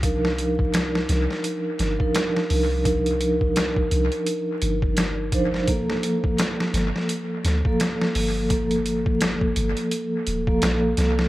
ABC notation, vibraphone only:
X:1
M:4/4
L:1/16
Q:"Swing 16ths" 1/4=85
K:Gm
V:1 name="Vibraphone"
[F,DEB]8- [F,DEB]3 [F,DEB]4- [F,DEB] | [F,DEB]8- [F,DEB]3 z3 [F,DEc]2 | [F,B,A]8- [F,B,A]3 [F,B,A]4- [F,B,A] | [F,B,A]8- [F,B,A]3 [F,B,A]4- [F,B,A] |]